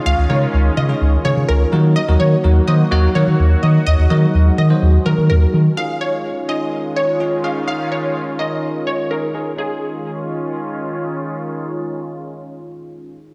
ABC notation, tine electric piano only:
X:1
M:4/4
L:1/16
Q:1/4=126
K:Db
V:1 name="Tine electric piano"
z2 [A,DEFB]4 z [A,DEFA]2 z [A,DEFA]4 [G,B,EGB]2 | z [G,B,EGB]2 z [G,B,EGB] z [G,B,EGc] z [G,B,EGd] z [G,B,EGB]6 | z2 [G,B,EGB]4 z [G,B,EGc]2 z [G,B,EGB]4- [G,B,EGB] z | [DEFA]4 z2 [DEFA]4 z2 [DEFA] z [DEFA] z |
[DEFB]4 z2 [DEFB]4 z2 [DEFA] z [DEFA] z | [DEFA]16- | [DEFA]16 |]